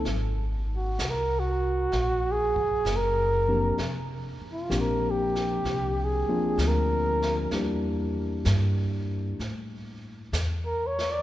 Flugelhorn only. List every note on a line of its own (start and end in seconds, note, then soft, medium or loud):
0.76 1.11 F#4 medium
1.09 1.41 A#4 medium
1.39 2.33 F#4 medium
2.32 2.98 G#4 medium
2.96 3.84 A#4 medium
4.52 4.81 F4 medium
4.80 5.12 A#4 medium
5.10 6.06 G4 medium
6.04 6.69 G#4 medium
6.67 7.56 A#4 medium
10.66 10.88 A#4 medium
10.86 11.13 C#5 medium
11.12 11.22 D5 medium